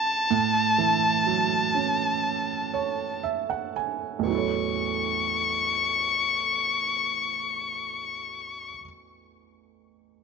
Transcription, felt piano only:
0.00 0.27 D3 medium
0.30 4.23 A2 medium
0.78 2.70 E3 soft
1.26 3.20 F#3 soft
1.75 3.72 C#4 soft
2.74 3.21 C#5 soft
3.23 3.48 E5 soft
3.50 3.74 F#5 soft
3.76 4.24 G#5 soft
4.19 8.65 A1 soft
4.19 8.68 E2 soft
4.27 8.72 F#3 soft
4.27 8.76 E4 soft
4.34 8.80 A4 soft
4.34 8.84 C#5 soft

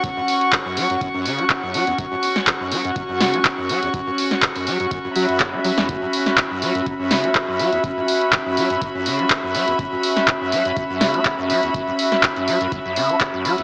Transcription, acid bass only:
0.03 0.11 F#2 medium
0.17 0.20 F#2 medium
0.52 0.57 F#2 medium
0.65 0.78 F#2 medium
0.77 0.87 F#3 loud
0.90 0.96 F#2 loud
1.01 1.08 F#2 medium
1.14 1.27 F#2 medium
1.25 1.40 C#3 medium
1.39 1.45 F#3 medium
1.63 1.76 F#2 medium
1.74 1.85 F#3 loud
1.87 1.94 E2 medium
1.99 2.06 F#2 medium
2.12 2.15 F#2 medium
2.47 2.52 F#2 medium
2.60 2.73 F#2 medium
2.72 2.83 F#3 loud
2.85 2.91 F#2 loud
2.96 3.03 F#2 medium
3.09 3.22 F#2 medium
3.21 3.35 C#3 medium
3.34 3.40 F#3 medium
3.58 3.71 F#2 medium
3.69 3.80 F#3 loud
3.82 3.89 E2 medium
3.94 4.01 F#2 medium
4.07 4.11 F#2 medium
4.43 4.47 F#2 medium
4.56 4.68 F#2 medium
4.67 4.78 F#3 loud
4.80 4.86 F#2 loud
4.91 4.99 F#2 medium
5.04 5.08 F#2 medium
5.16 5.27 F#3 loud
5.29 5.55 F#2 medium
5.53 5.59 A3 loud
5.64 5.72 F#3 loud
5.78 5.87 E2 medium
5.89 5.96 F#2 medium
6.02 6.06 F#2 medium
6.38 6.42 F#2 medium
6.51 6.64 F#2 medium
6.62 6.73 F#3 loud
6.75 6.81 F#2 loud
6.86 6.94 F#2 medium
6.99 7.12 F#2 medium
7.11 7.25 C#3 medium
7.24 7.30 F#3 medium
7.48 7.61 F#2 medium
7.60 7.70 F#3 loud
7.73 7.79 E2 medium
7.84 7.91 F#2 medium
7.97 8.01 F#2 medium
8.33 8.37 F#2 medium
8.46 8.59 F#2 medium
8.57 8.68 F#3 medium
8.70 8.76 F#2 loud
8.82 8.89 F#2 medium
8.95 9.07 F#2 medium
9.06 9.21 C#3 medium
9.19 9.25 F#3 medium
9.43 9.56 F#2 medium
9.55 9.66 F#3 loud
9.68 9.74 E2 medium
9.79 9.86 F#2 medium
9.92 9.96 F#2 medium
10.28 10.32 F#2 medium
10.41 10.54 F#2 medium
10.52 10.63 F#3 loud
10.65 10.72 F#2 loud
10.77 10.84 F#2 medium
10.90 11.03 F#2 medium
11.01 11.16 C#3 medium
11.14 11.20 F#3 medium
11.39 11.51 F#2 medium
11.50 11.61 F#3 loud
11.63 11.69 E2 medium
11.74 11.81 F#2 medium
11.87 11.91 F#2 medium
12.23 12.27 F#2 medium
12.36 12.49 F#2 medium
12.47 12.58 F#3 loud
12.60 12.67 F#2 loud
12.72 12.79 F#2 medium
12.85 12.98 F#2 medium
12.96 13.11 C#3 medium
13.09 13.15 F#3 medium
13.34 13.46 F#2 medium
13.45 13.56 F#3 loud
13.58 13.63 E2 medium

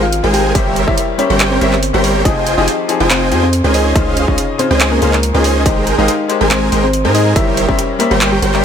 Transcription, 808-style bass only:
0.00 0.21 G#1 loud
0.24 0.53 G#1 loud
0.87 0.98 G1 loud
1.30 1.59 G1 loud
1.61 1.92 G1 loud
1.94 2.23 G1 loud
2.57 2.68 F1 loud
3.00 3.33 F1 loud
3.31 3.62 F2 loud
3.64 3.93 C#2 loud
3.95 4.26 C#2 loud
4.28 4.39 C#2 loud
4.71 5.00 C#2 loud
5.02 5.32 C#2 loud
5.34 5.67 C#2 loud
5.66 5.96 G#1 loud
5.98 6.09 G#1 loud
6.41 6.70 G#1 loud
6.72 7.06 G#1 loud
7.05 7.34 G#2 loud
7.36 7.66 G1 loud
7.69 7.79 G1 loud
8.11 8.40 G1 loud
8.42 8.63 G1 loud

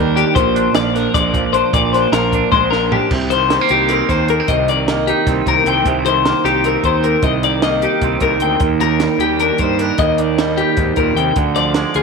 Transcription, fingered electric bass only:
0.00 0.23 D#2 medium
0.36 0.66 A#1 medium
0.75 1.06 A#1 medium
1.14 1.61 A#1 medium
1.73 2.04 A#1 loud
2.12 2.43 A#1 medium
2.52 2.98 A#1 medium
3.11 3.57 C2 medium
3.70 4.01 C2 medium
4.09 4.40 D#2 medium
4.49 5.11 C2 medium
5.27 5.42 C2 medium
5.46 5.61 C2 medium
5.66 5.81 C2 loud
5.86 6.32 C2 medium
6.44 6.76 C2 medium
6.84 7.15 D#2 medium
7.23 7.85 C2 medium
8.02 8.17 C2 medium
8.21 8.37 C2 medium
8.39 8.56 D2 medium
8.60 9.07 D#2 medium
9.18 9.50 D#2 medium
9.59 9.90 G2 medium
9.98 10.61 D#2 medium
10.77 10.93 D#2 medium
10.97 11.13 D#2 medium
11.15 11.31 D#2 loud
11.36 11.83 D2 medium
11.95 12.03 D2 medium

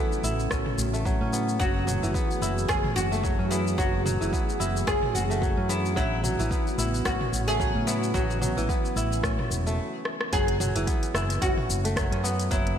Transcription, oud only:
0.00 1.01 E4 medium
1.60 2.38 F#4 loud
2.69 2.94 G#4 loud
2.96 3.50 F#4 loud
3.51 3.78 E4 medium
3.78 4.56 F#4 medium
4.87 5.14 G#4 loud
5.15 5.69 F#4 loud
5.69 5.96 E4 medium
5.97 7.05 E4 medium
7.05 7.47 F#4 medium
7.48 7.87 G#4 loud
7.87 8.14 E4 medium
8.14 9.74 F#4 medium
10.33 11.38 G#4 loud
11.42 12.51 F#4 loud
12.51 12.79 E4 medium

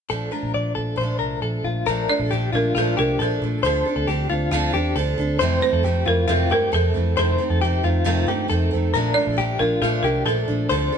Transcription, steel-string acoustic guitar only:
0.09 0.32 A#2 medium
0.09 0.32 F3 medium
0.09 0.32 A3 medium
0.09 0.30 D4 medium
0.31 0.99 F3 soft
0.31 0.99 A3 soft
0.31 1.03 D4 medium
0.96 1.85 A#2 medium
0.96 1.87 F3 medium
1.01 1.88 A3 medium
1.01 1.88 D4 medium
1.86 2.08 A#2 medium
1.86 2.09 F3 medium
1.86 2.09 A3 medium
1.86 2.07 D4 medium
2.08 2.31 F3 soft
2.08 2.32 A3 soft
2.08 2.31 D4 medium
2.31 2.53 A#2 medium
2.31 2.54 F3 medium
2.31 2.53 A3 medium
2.31 2.52 D4 medium
2.53 2.76 F3 soft
2.53 2.76 A3 soft
2.53 2.75 D4 soft
2.76 2.98 A#2 medium
2.76 2.98 F3 medium
2.76 2.98 A3 medium
2.76 2.96 D4 medium
2.97 3.20 F3 soft
2.97 3.21 A3 soft
2.97 3.19 D4 medium
3.20 3.42 A#2 medium
3.20 3.42 F3 medium
3.20 3.42 A3 medium
3.20 3.40 D4 medium
3.42 3.63 F3 soft
3.42 3.65 A3 medium
3.42 3.64 D4 medium
3.64 3.86 D3 medium
3.64 3.86 F3 medium
3.64 3.86 C4 medium
3.64 3.86 D4 medium
3.64 3.84 A4 medium
3.85 4.08 C4 soft
3.85 4.09 D4 soft
3.85 4.08 A4 medium
4.08 4.30 F3 medium
4.08 4.30 C4 medium
4.08 4.30 D4 medium
4.08 4.28 A4 medium
4.29 4.52 C4 soft
4.29 4.52 D4 medium
4.29 4.52 A4 medium
4.51 4.74 D3 medium
4.51 4.74 F3 medium
4.51 4.74 C4 medium
4.51 4.73 D4 loud
4.51 4.72 A4 loud
4.73 4.95 C4 medium
4.73 4.96 D4 medium
4.73 4.95 A4 medium
4.96 5.18 F3 medium
4.96 5.18 C4 medium
4.96 5.18 D4 medium
4.96 5.17 A4 medium
5.18 5.41 C4 medium
5.18 5.41 D4 medium
5.18 5.40 A4 medium
5.40 5.62 F2 medium
5.40 5.63 C3 medium
5.40 5.62 E3 medium
5.40 5.62 A3 medium
5.40 5.60 C4 medium
5.61 5.83 E3 soft
5.61 5.84 A3 medium
5.61 5.84 C4 medium
5.83 6.06 C3 medium
5.83 6.07 E3 medium
5.83 6.06 A3 medium
5.83 6.04 C4 medium
6.05 6.28 E3 soft
6.05 6.28 A3 soft
6.05 6.28 C4 soft
6.28 6.50 F2 medium
6.28 6.50 C3 medium
6.28 6.51 E3 medium
6.28 6.50 A3 medium
6.28 6.49 C4 medium
6.50 6.72 E3 soft
6.50 6.73 A3 soft
6.50 6.72 C4 medium
6.72 6.94 C3 medium
6.72 6.95 E3 medium
6.72 6.94 A3 medium
6.72 6.93 C4 medium
6.94 7.17 E3 soft
6.94 7.17 A3 medium
6.94 7.17 C4 medium
7.17 7.39 F2 medium
7.17 7.39 C3 medium
7.17 7.39 D#3 medium
7.17 7.39 A3 medium
7.17 7.37 C4 medium
7.38 7.62 D#3 soft
7.38 7.62 A3 soft
7.38 7.61 C4 medium
7.61 7.83 C3 medium
7.61 7.84 D#3 medium
7.61 7.84 A3 medium
7.61 7.82 C4 medium
7.83 8.05 D#3 soft
7.83 8.05 A3 soft
7.83 8.05 C4 medium
8.04 8.27 F2 medium
8.04 8.27 C3 medium
8.04 8.28 D#3 medium
8.04 8.27 A3 medium
8.04 8.25 C4 loud
8.26 8.48 D#3 soft
8.26 8.49 A3 medium
8.26 8.49 C4 medium
8.48 8.71 C3 medium
8.48 8.72 D#3 medium
8.48 8.72 A3 medium
8.48 8.70 C4 medium
8.71 8.95 D#3 soft
8.71 8.94 A3 medium
8.71 8.93 C4 medium
8.94 9.16 A#2 medium
8.94 9.16 F3 medium
8.94 9.16 A3 medium
8.94 9.14 D4 medium
9.15 9.37 F3 soft
9.15 9.38 A3 medium
9.15 9.38 D4 medium
9.37 9.59 A#2 medium
9.37 9.60 F3 medium
9.37 9.60 A3 medium
9.41 9.58 D4 medium
9.60 9.82 F3 soft
9.60 9.82 A3 soft
9.60 9.82 D4 soft
9.82 10.04 A#2 medium
9.82 10.05 F3 medium
9.82 10.04 A3 medium
9.82 10.02 D4 medium
10.04 10.26 F3 soft
10.04 10.27 A3 medium
10.04 10.26 D4 medium
10.26 10.48 A#2 medium
10.26 10.49 F3 medium
10.26 10.48 A3 medium
10.26 10.46 D4 medium
10.48 10.69 F3 soft
10.48 10.70 A3 medium
10.48 10.70 D4 medium
10.69 10.92 D3 medium
10.69 10.92 F3 medium
10.69 10.93 C4 medium
10.69 10.93 D4 medium
10.69 10.91 A4 medium
10.92 10.98 D4 medium
10.92 10.98 A4 medium

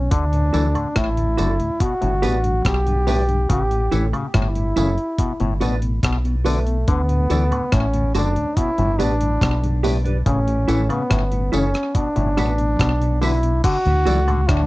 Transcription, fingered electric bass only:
0.12 0.51 D2 loud
0.55 0.74 D2 medium
0.97 1.35 A1 medium
1.39 1.58 F#1 medium
2.03 2.22 G1 medium
2.24 2.62 A1 medium
2.65 3.46 B1 medium
3.50 3.89 A1 medium
3.93 4.12 A1 medium
4.35 4.74 G1 medium
4.77 4.97 F#1 medium
5.41 5.60 G1 medium
5.61 6.00 A1 medium
6.03 6.84 B1 medium
6.88 7.27 D2 loud
7.31 7.50 D2 medium
7.73 8.12 A1 medium
8.15 8.35 F#1 medium
8.79 8.98 G1 loud
9.00 9.39 A1 medium
9.42 10.22 B1 medium
10.27 10.65 A1 loud
10.69 10.88 A1 medium
11.11 11.50 G1 medium
11.53 11.73 F#1 medium
12.17 12.36 G1 medium
12.38 12.77 A1 medium
12.80 13.60 B1 medium
13.86 14.05 D2 medium
14.07 14.46 C#2 medium
14.49 14.66 D2 loud

